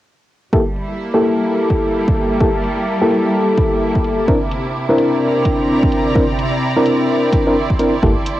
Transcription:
0.53 G3 A#3 E4 G4 A4 E5 A5 D6, kick
0.76 E4, closed hi-hat
0.94 A#3
1.14 A#3 E4 G4 A4
1.23 closed hi-hat
1.70 kick, closed hi-hat
2.08 kick
2.17 closed hi-hat
2.40 A#3 E4 G4 A4, kick
2.64 closed hi-hat
3.02 A#3 E4 G4 A4
3.11 closed hi-hat
3.58 kick, closed hi-hat
3.95 kick
4.04 closed hi-hat
4.28 C3 C4 D4 E4 A#4 E5 G5 C6, kick
4.51 closed hi-hat
4.88 C4 D4 E4 A#4 D5
4.98 closed hi-hat
5.18 A#5
5.45 kick, closed hi-hat
5.83 kick
5.92 closed hi-hat
6.15 C4 D4 E4 A#4, kick
6.39 closed hi-hat
6.77 C4 D4 E4 A#4
6.86 closed hi-hat
7.33 kick, closed hi-hat
7.47 C4 D4 E4 A#4
7.70 kick
7.80 C4 D4 E4 A#4, closed hi-hat
8.03 G1 A#3 E4 G4 A4 A5, kick
8.26 closed hi-hat
8.32 A#3

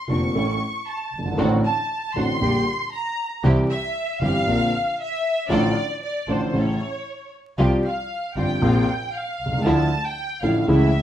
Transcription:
0.08 F1 F2 D3 A#3 C4 D4 F4 C#6
0.34 A1 A2 E3 A3 C#4 E4 A4
0.86 A5
1.12 G1
1.18 F#1
1.25 G1
1.31 G#1
1.37 A1 A2 D3 A3 C4 D4 F#4
1.64 A5
2.15 A1 A2 D3 A3 C4 D4 F#4 C6
2.40 A#1 A#2 D3 G3 A#3 D4 G4
2.93 A#5
3.43 C2 C3 E3 G3 C4 E4 G4
3.69 E5
4.21 G1 G2 E3 G3 C4 E4 G4 F5
4.47 A#1 A#2 D3 A#3 C4 D4 F4 A#4
4.99 E5
5.49 A1 A2 D3 F3 A3 D4 F4 A4 D5
6.02 D5
6.28 A1 A2 D3 F3 A3 D4 F4 A4 C5
6.53 A1 A2 C#3 E3 A3 C#4 E4 A4 C#5
7.58 C2 C3 F3 G3 C4 F4 G4
7.85 F5
8.36 G1 G2 C3 F3 G3 C4 F4 G4 G5
8.61 A#1 A#2 C3 F3 A#3 C4 F4
9.13 F5
9.39 C2
9.46 B1
9.52 C2
9.58 C#2
9.64 D2 D3 F3 A3 D4 E4 A5
10.04 G5
10.42 A1 A2 D3 F3 A3 D4 E4 F5
10.67 C#2 C#3 E3 A3 C#4 E4 E5

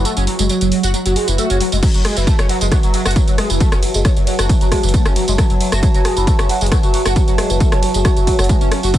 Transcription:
Already playing: F#3 F#4
0.05 A3, closed hi-hat, tambourine
0.17 F#1 C#4, closed hi-hat, tambourine
0.27 F#3, open hi-hat
0.39 F#1 G#3, closed hi-hat, tambourine
0.49 F#3, closed hi-hat, tambourine
0.61 F#1 F#3, closed hi-hat, tambourine
0.72 F#3, open hi-hat
0.83 F#1 F#4, closed hi-hat, tambourine
0.94 F#3, closed hi-hat, tambourine, swell
1.05 F#1 F#3, closed hi-hat, tambourine
1.16 G#3, open hi-hat
1.28 F#1 E3, closed hi-hat, tambourine
1.38 A3, closed hi-hat, tambourine
1.50 F#1 C#4, closed hi-hat, tambourine
1.60 F#3, open hi-hat
1.72 F#1 G#3, open hi-hat, tambourine
1.83 F#3 F#4, kick, closed hi-hat, crash, ride, tambourine
1.94 F#1 F#3, closed hi-hat, tambourine
2.05 G#3 B4, cross-stick, open hi-hat, ride
2.17 F#1 E3 E5 A5, closed hi-hat, tambourine
2.27 A3, kick, closed hi-hat, ride, tambourine
2.39 F#1 C#4, cross-stick, closed hi-hat, tambourine
2.49 F#3, open hi-hat, ride
2.61 F#1 G#3, closed hi-hat, tambourine
2.72 F#3, kick, cross-stick, closed hi-hat, ride, tambourine
2.83 F#1 F#3, closed hi-hat, tambourine
2.94 F#3, open hi-hat, ride
3.05 F#1 F#4, cross-stick, closed hi-hat, tambourine
3.11 closed hi-hat
3.16 F#3, kick, closed hi-hat, ride, tambourine
3.28 F#1 F#3, closed hi-hat, tambourine
3.38 G#3, cross-stick, open hi-hat, ride
3.50 F#1 E3, closed hi-hat, tambourine
3.60 A3, kick, closed hi-hat, ride, tambourine
3.72 F#1 C#4, cross-stick, closed hi-hat, tambourine
3.83 F#3, open hi-hat, ride
3.94 F#1 G#3, closed hi-hat, tambourine
4.05 F#3, kick, cross-stick, closed hi-hat, ride, tambourine
4.17 F#1 F#3, closed hi-hat, tambourine
4.27 F#3, open hi-hat, ride
4.39 F#1 F#4, cross-stick, closed hi-hat, tambourine
4.49 F#3, kick, closed hi-hat, ride, tambourine
4.61 F#1 F#3, closed hi-hat, tambourine
4.72 G#3, kick, cross-stick, open hi-hat, ride
4.83 F#1 E3, closed hi-hat, tambourine
4.89 closed hi-hat
4.94 A3, kick, closed hi-hat, ride, tambourine
5.06 F#1 C#4, cross-stick, closed hi-hat, tambourine
5.16 F#3, open hi-hat, ride
5.28 F#1 G#3, closed hi-hat, tambourine
5.38 F#3, kick, cross-stick, closed hi-hat, ride, tambourine
5.50 F#1 F#3, closed hi-hat, tambourine
5.61 F#3, open hi-hat, ride
5.72 F#1 F#4, cross-stick, closed hi-hat, tambourine
5.83 F#3, kick, closed hi-hat, ride, tambourine
5.94 F#1 F#3, closed hi-hat, tambourine
6.05 G#3, cross-stick, open hi-hat, ride
6.17 F#1 E3, closed hi-hat, tambourine
6.27 A3, kick, closed hi-hat, ride, tambourine
6.39 F#1 C#4, cross-stick, closed hi-hat, tambourine
6.49 F#3, open hi-hat, ride
6.61 F#1 G#3, closed hi-hat, tambourine
6.66 closed hi-hat
6.72 F#3, kick, cross-stick, closed hi-hat, ride, tambourine
6.83 F#1 F#3, closed hi-hat, tambourine
6.94 F#3, open hi-hat, ride
7.05 F#1 F#4, cross-stick, closed hi-hat, tambourine
7.16 F#3, kick, closed hi-hat, ride, tambourine
7.28 F#1 F#3, closed hi-hat, tambourine
7.38 G#3, cross-stick, open hi-hat, ride
7.50 F#1 E3, closed hi-hat, tambourine
7.60 A3, kick, closed hi-hat, ride, tambourine
7.72 F#1 C#4, cross-stick, closed hi-hat, tambourine
7.83 F#3, open hi-hat, ride
7.94 F#1 G#3, closed hi-hat, tambourine
8.05 F#3, kick, cross-stick, closed hi-hat, ride, tambourine
8.17 F#1 F#3, closed hi-hat, tambourine
8.27 F#3, kick, open hi-hat, ride
8.39 F#1 F#3, cross-stick, closed hi-hat, tambourine
8.44 closed hi-hat
8.49 G#3, kick, closed hi-hat, ride, tambourine
8.61 F#1 C#4, closed hi-hat, tambourine
8.72 C#4, cross-stick, open hi-hat, ride
8.83 F#1 F#4, open hi-hat, tambourine
8.94 A3, kick, closed hi-hat, ride, tambourine

